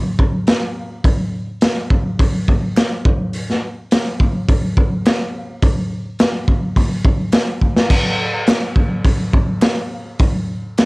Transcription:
0.19 kick medium
0.47 snare loud
0.47 clap medium
0.47 open hi-hat soft
1.04 kick medium
1.04 open hi-hat soft
1.61 snare loud
1.61 clap medium
1.61 open hi-hat soft
1.90 kick medium
2.19 kick medium
2.19 open hi-hat soft
2.48 kick medium
2.76 snare loud
2.76 clap medium
2.76 open hi-hat soft
3.05 kick loud
3.33 open hi-hat soft
3.50 snare soft
3.91 snare loud
3.91 clap medium
3.91 open hi-hat soft
4.20 kick medium
4.49 kick medium
4.49 open hi-hat soft
4.77 kick medium
5.06 snare loud
5.06 clap medium
5.06 open hi-hat soft
5.62 kick medium
5.62 open hi-hat soft
6.19 snare loud
6.19 clap medium
6.19 open hi-hat soft
6.48 kick medium
6.76 kick medium
6.76 open hi-hat soft
7.05 kick medium
7.32 snare loud
7.32 clap medium
7.32 open hi-hat medium
7.62 kick medium
7.77 snare medium
7.90 kick medium
7.90 open hi-hat soft
7.90 crash medium
8.47 snare loud
8.47 clap medium
8.47 open hi-hat medium
8.76 kick medium
9.05 kick medium
9.05 open hi-hat soft
9.33 kick medium
9.61 snare loud
9.61 clap medium
9.61 open hi-hat medium
10.19 kick loud
10.19 open hi-hat soft
10.78 snare medium
10.78 clap medium
10.78 open hi-hat soft

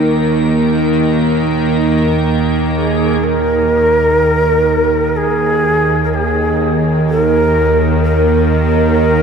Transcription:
0.00 3.20 D#2 medium
0.00 3.20 D#3 medium
0.00 3.21 A#3 medium
0.00 3.22 D#4 medium
0.00 3.21 A#4 medium
0.00 3.20 D#5 medium
2.76 3.25 G#4 medium
3.21 9.23 D#2 medium
3.21 9.23 D#3 medium
3.21 9.23 A#3 medium
3.21 9.23 A#4 medium
3.21 5.18 A#4 loud
5.16 6.03 G#4 medium
6.04 6.15 A#4 medium
6.14 6.82 G#4 medium
7.10 7.21 A4 loud
7.21 8.00 A#4 loud
8.03 9.23 A#4 medium

